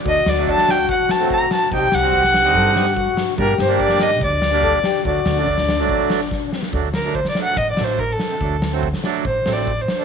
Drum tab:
SD |--o--oo---o---o-|--o--oo--ooo--o-|--o--oo---o---o-|--o--oo---ooo-oo|
BD |o---o---o---o---|o---o---o---o---|o---o---o---o---|o---o---o---o---|

SD |--o--oo---oo--o-|--o--oo---o---o-|
BD |o---o---o---o---|o---o---o---o---|